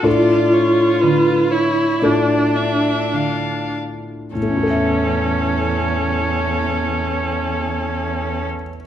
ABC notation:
X:1
M:4/4
L:1/8
Q:1/4=53
K:A
V:1 name="Violin"
d c B c d e =f z | A8 |]
V:2 name="Grand piano"
[A,,D=FA]4 [A,,DFA]4 | [A,,A,CEAe]8 |]
V:3 name="Viola"
=F3 E D3 z | C8 |]
V:4 name="Cello" clef=bass
z2 D,2 z2 D,2 | E,,8 |]